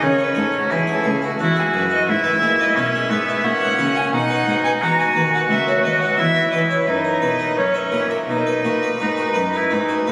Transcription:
0.01 C#3 C#4 C#5
0.18 C#5
0.23 B4
0.35 G#2 G#4 A4
0.52 C#5
0.59 F#4
0.70 E2 E4 G#4
0.87 G#4 A4
1.04 C#2 G#4 C#5
1.22 E4 F#4
1.39 E2 C#4 E4 F#4
1.56 G#4
1.74 F#2 B4 C#5
1.90 E4 D#5
2.06 G#2 E4 E5
2.24 B4
2.42 A#2 G#4
2.60 B4 D#5
2.76 B2 C#4 E4 E5
2.95 G#4
3.10 G#2 B3 B4
3.28 E4
3.44 A#2 C#4 F#5
3.61 C#5
3.79 C#3 F#4
3.96 C#5 G#5
4.13 B2 D#4 F#5
4.30 B4
4.47 G#2 F#4
4.64 B4 G#5
4.80 E2 D#4 F#4 A#5
4.99 F#4 G#5
5.15 D#2 B4
5.34 D#4 F#5
5.50 C#2 B3 E5
5.68 F#4 C#5
5.82 D#2 B4 D#5
6.01 D#4 F#5
6.15 E2 E5
6.19 E2 E4
6.36 E5
6.51 E3 B4 D#5
6.70 C#5 E5
6.87 F#2 D#4 B4
7.04 A#4 D#5
7.22 B2 B4
7.39 D#5
7.56 F#2 C#4 C#5
7.74 A#4 E5
7.91 A#2 A#4 B4
8.11 A#4 E5
8.28 B2 D#4 B4
8.47 B4
8.64 A#2 F#4
8.83 B4
8.99 G#2 D#4
9.17 F#4
9.34 F#2 B4
9.53 D#4 E4
9.70 G#2 B3 D#4
9.89 F#4
10.07 A#2 B4

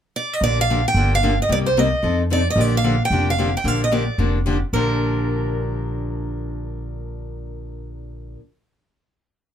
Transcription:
0.16 D5
0.33 D#5
0.41 A#1 D3 F3 A#3 D4 G4 D5
0.61 F5
0.70 D3 F3 A#3 D4 G4
0.88 G5
0.94 G1 D3 F3 A#3 D4 G4
1.15 F5
1.23 D3 F3 A#3 D4 G4
1.42 D#5
1.49 C2 C3 G3 A#3 D#4 G4 D5
1.66 C5
1.77 C3 G3 A#3 D#4 G4 D#5
2.02 F2 F3 C4 D#4 A4
2.30 F3 C4 D#4 A4 D5
2.50 D#5
2.56 A#1 D3 F3 A#3 D4 G4
2.61 D5
2.77 F5
2.84 D3 F3 A#3 D4 G4
3.05 G5
3.10 F1 D3 F3 A#3 D4 G4
3.30 F5
3.38 D3 F3 A#3 D4 G4
3.57 G5
3.64 A#1 D3 F3 A#3 D4 G4 F5
3.84 D#5
3.91 D3 F3 A#3 D4 G4 D5
4.18 F1 D3 F3 A#3 D4 G4
4.46 D3 F3 A#3 D4 G4
4.73 A#1 A#2 D3 F3 A#3 D4 G4 A#4

